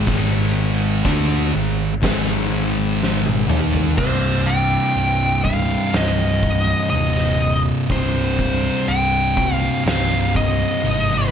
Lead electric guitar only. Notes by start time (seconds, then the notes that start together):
3.98 C5
4.47 G5
5.44 F5
5.96 D#5
6.90 D#5
7.92 C5
8.88 G5
9.54 F5
9.88 F5
10.36 D#5